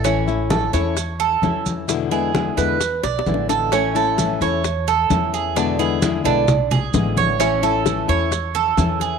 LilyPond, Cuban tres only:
\new Staff \with { instrumentName = "Cuban tres" } { \time 4/4 \key a \major \tempo 4 = 131 cis'4 a'8 cis''4 a'4 r8 | r8 gis'4 b'4 d''4 a'8 | cis'8 a'4 cis''4 a'4 gis'8 | d'8 gis'4 d'4 gis'4 cis''8 |
cis'8 a'4 cis''4 a'4 gis'8 | }